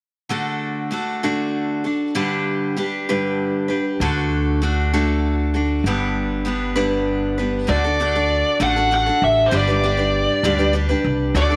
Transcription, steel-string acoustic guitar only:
0.29 0.91 D3 medium
0.29 0.90 A3 medium
0.29 0.91 D4 medium
0.29 0.91 F#4 medium
0.29 0.92 A4 medium
0.91 1.22 A3 soft
0.91 1.22 D4 medium
0.91 1.22 F#4 medium
0.91 1.22 A4 medium
1.23 1.85 D3 medium
1.23 1.85 A3 medium
1.23 1.86 D4 medium
1.23 1.84 F#4 medium
1.23 1.83 A4 medium
1.84 2.14 D4 soft
1.84 2.15 F#4 soft
1.84 2.15 A4 soft
2.15 2.76 G2 medium
2.15 2.76 D3 medium
2.15 2.75 G3 medium
2.15 2.77 D4 medium
2.15 2.77 G4 medium
2.15 2.77 B4 medium
2.77 3.07 G3 medium
2.77 3.08 D4 medium
2.77 3.08 G4 medium
2.77 3.08 B4 medium
3.09 3.70 G2 medium
3.09 3.70 D3 medium
3.09 3.69 G3 medium
3.09 3.69 D4 medium
3.09 3.68 G4 medium
3.09 3.67 B4 medium
3.68 4.00 G3 soft
3.68 4.00 D4 soft
3.68 4.00 G4 soft
3.68 3.99 B4 soft
4.01 4.62 D3 medium
4.01 4.61 A3 medium
4.01 4.63 D4 medium
4.01 4.62 F#4 medium
4.01 4.63 A4 medium
4.62 4.92 A3 medium
4.62 4.93 D4 medium
4.62 4.92 F#4 medium
4.62 4.92 A4 medium
4.93 5.55 D3 soft
4.93 5.54 A3 medium
4.93 5.55 D4 medium
4.93 5.53 F#4 medium
4.93 5.53 A4 medium
5.54 5.85 D4 soft
5.54 5.85 F#4 soft
5.54 5.84 A4 soft
5.86 6.47 G2 medium
5.86 6.47 D3 medium
5.86 6.44 G3 medium
5.86 6.44 B3 medium
5.86 6.45 D4 medium
5.86 6.47 B4 medium
6.45 6.75 G3 medium
6.45 6.76 B3 medium
6.45 6.75 D4 medium
6.45 6.74 B4 medium
6.76 7.38 G2 medium
6.76 7.38 D3 medium
6.76 7.38 G3 medium
6.76 7.38 B3 medium
6.76 7.38 D4 medium
6.76 7.37 B4 medium
7.38 7.67 G3 soft
7.38 7.68 B3 soft
7.38 7.67 D4 soft
7.38 7.68 B4 soft
7.67 7.83 D3 medium
7.67 7.83 A3 medium
7.67 7.84 D4 medium
7.67 7.84 F#4 medium
7.67 7.83 A4 medium
7.84 7.99 D4 soft
7.84 8.00 F#4 soft
7.84 7.99 A4 soft
8.00 8.15 A3 soft
8.00 8.15 D4 medium
8.00 8.15 F#4 medium
8.00 8.14 A4 medium
8.15 8.60 D4 soft
8.15 8.60 F#4 soft
8.15 8.61 A4 soft
8.60 8.75 D3 medium
8.60 8.76 A3 medium
8.60 8.76 D4 medium
8.60 8.76 F#4 medium
8.60 8.75 A4 medium
8.76 8.91 D4 soft
8.76 8.91 F#4 soft
8.76 8.91 A4 soft
8.91 9.06 A3 soft
8.91 9.07 D4 soft
8.91 9.06 F#4 medium
8.91 9.05 A4 soft
9.06 9.51 D4 soft
9.06 9.52 F#4 soft
9.06 9.52 A4 soft
9.51 9.67 G2 medium
9.51 9.67 D3 medium
9.51 9.68 G3 medium
9.51 9.68 D4 medium
9.51 9.67 G4 medium
9.51 9.66 B4 medium
9.67 9.82 G3 soft
9.67 9.83 D4 soft
9.67 9.83 G4 soft
9.67 9.83 B4 soft
9.84 9.98 G3 medium
9.84 9.98 D4 medium
9.84 9.97 G4 medium
9.84 9.96 B4 medium
9.97 10.44 G3 soft
9.97 10.43 D4 soft
9.97 10.44 G4 soft
9.97 10.44 B4 soft
10.44 10.59 G2 medium
10.44 10.60 D3 medium
10.44 10.59 G3 medium
10.44 10.59 D4 medium
10.44 10.58 G4 medium
10.44 10.57 B4 medium
10.58 10.72 G3 soft
10.58 10.73 D4 soft
10.58 10.73 G4 medium
10.58 10.74 B4 soft
10.73 10.89 G3 medium
10.73 10.90 D4 medium
10.73 10.88 G4 medium
10.73 10.88 B4 medium
10.89 11.35 G3 soft
10.89 11.34 D4 soft
10.89 11.36 G4 soft
10.89 11.35 B4 medium
11.35 11.51 D3 medium
11.35 11.51 A3 medium
11.35 11.51 D4 medium
11.35 11.50 F#4 medium
11.35 11.49 A4 medium
11.50 11.56 D4 soft
11.50 11.56 F#4 soft
11.50 11.56 A4 soft

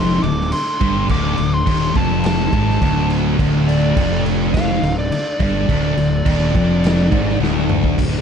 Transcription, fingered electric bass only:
0.00 0.20 F1 medium
0.23 0.50 D1 medium
0.81 1.08 G1 loud
1.10 1.36 D1 loud
1.38 1.65 D1 medium
1.67 1.94 D#1 loud
1.96 2.49 F1 loud
2.53 2.80 G#1 loud
2.82 3.35 D1 loud
3.39 3.93 D1 medium
3.97 4.79 F1 loud
4.82 5.09 D1 medium
5.40 5.67 G1 loud
5.69 5.96 D1 loud
5.97 6.24 D1 medium
6.26 6.53 D#1 loud
6.55 7.08 F1 loud
7.12 7.39 G#1 loud
7.40 7.94 D1 loud
7.98 8.21 D1 medium

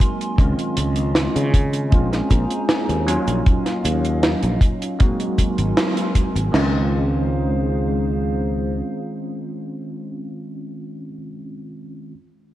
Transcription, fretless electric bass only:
0.38 0.52 C#2 loud
0.77 1.26 C#2 medium
1.36 1.94 C#3 loud
1.92 2.20 A#1 medium
2.31 2.45 A#1 loud
2.89 3.16 D#2 medium
3.28 3.41 A#1 medium
3.85 4.34 D#2 medium
4.43 4.56 A#1 medium
5.58 5.72 G#1 medium
6.35 6.48 G#1 medium
6.54 8.81 C#2 loud

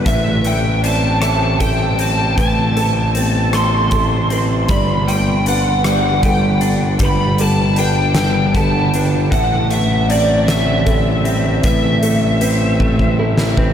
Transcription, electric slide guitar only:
0.06 0.46 E5 medium
0.46 0.85 G5 medium
0.85 1.20 A5 medium
1.21 1.61 A5 medium
1.61 2.00 G5 medium
2.02 2.37 A5 medium
2.38 3.55 A5 medium
3.55 4.37 C6 medium
4.70 5.09 B5 medium
5.08 5.47 G5 medium
5.48 5.85 F#5 medium
5.86 6.24 F#5 medium
6.25 6.60 G5 medium
7.05 7.42 B5 medium
7.42 7.79 A5 medium
7.79 8.16 G5 medium
8.17 8.55 G5 medium
8.55 8.91 A5 medium
9.32 9.72 F#5 medium
9.71 10.11 E5 medium
10.11 10.50 D5 medium
10.48 11.64 E5 medium
11.65 13.15 E5 medium

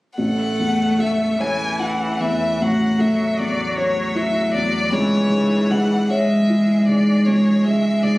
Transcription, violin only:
0.18 1.01 F#5 medium
1.00 1.42 E5 soft
1.41 1.81 G#5 soft
1.80 2.22 F#5 soft
2.21 2.63 E5 soft
2.62 3.02 F#5 soft
3.00 3.41 E5 soft
3.40 3.77 D5 soft
3.78 4.18 C#5 soft
4.17 4.53 E5 soft
4.54 4.94 D5 soft
4.93 5.72 C#5 medium
5.71 6.12 F#5 soft
6.10 6.87 E5 soft
6.87 7.28 D5 medium
7.26 7.66 C#5 medium
7.65 8.04 E5 medium
8.03 8.18 D5 medium

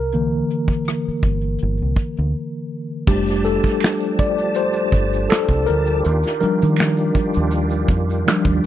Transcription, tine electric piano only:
0.00 1.18 A#4 medium
0.13 0.63 D3 soft
0.13 0.63 E3 soft
0.13 0.63 A#3 medium
3.08 3.59 G3 medium
3.08 3.59 A3 soft
3.08 3.59 D4 medium
3.08 3.46 G4 medium
3.45 4.21 A4 medium
4.19 4.36 D5 loud
4.56 5.32 C5 medium
5.30 5.68 A4 medium
5.66 6.37 A#4 loud
6.41 7.48 F3 medium
6.41 7.48 G3 soft
6.41 7.48 D4 medium
6.41 7.85 A#4 medium
8.26 8.60 F3 soft
8.26 8.60 G3 soft
8.26 8.60 D4 medium

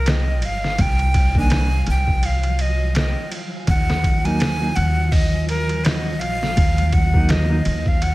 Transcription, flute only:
0.00 0.11 A#4 medium
0.09 0.47 D#5 medium
0.45 0.83 F5 medium
0.81 1.37 G5 loud
1.39 1.85 G#5 loud
1.90 2.27 G5 medium
2.26 2.63 F5 medium
2.61 2.96 D#5 medium
2.97 3.30 D#5 medium
3.69 4.27 F#5 loud
4.25 4.77 G#5 loud
4.76 5.13 F#5 loud
5.12 5.48 D#5 loud
5.49 5.86 A#4 medium
5.85 6.21 D#5 medium
6.20 6.95 F5 loud
6.93 7.32 F#5 loud
7.30 7.89 D#5 medium
7.88 8.04 F5 medium
8.03 8.15 F#5 loud

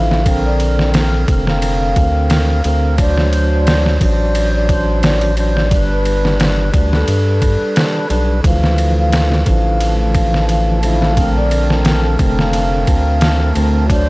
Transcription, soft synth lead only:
0.00 0.40 F5 loud
0.46 0.90 D5 medium
1.49 2.87 F5 loud
3.00 3.46 D5 loud
3.53 3.97 D5 loud
4.02 4.49 D5 loud
4.54 4.99 D5 loud
5.04 5.35 D5 medium
5.38 5.85 D5 loud
5.92 6.36 B4 medium
6.94 8.33 A4 loud
8.47 8.92 F5 loud
8.99 9.43 F5 loud
9.49 9.95 F5 medium
10.01 10.45 F5 loud
10.50 10.80 F5 medium
10.84 11.31 F5 loud
11.37 11.81 D5 medium
12.39 13.78 F5 loud
13.91 14.09 D5 loud

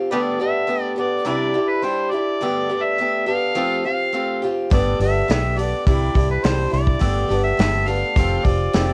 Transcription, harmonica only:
0.12 0.20 G4 medium
0.12 0.19 B4 medium
0.12 0.38 D5 medium
0.41 0.82 E5 medium
0.82 0.93 D5 medium
1.00 1.25 D5 medium
1.27 1.71 D5 medium
1.69 1.85 B4 medium
1.83 2.12 C5 medium
2.11 2.84 D5 medium
2.82 3.26 E5 loud
3.27 3.81 F5 loud
3.85 4.39 F5 medium
4.73 4.99 D5 medium
5.01 5.59 E5 medium
5.58 5.86 D5 medium
5.87 6.27 D5 medium
6.31 6.45 B4 medium
6.44 6.72 C5 medium
6.73 7.41 D5 medium
7.44 7.89 E5 loud
7.87 8.46 F5 medium
8.44 8.93 D5 medium

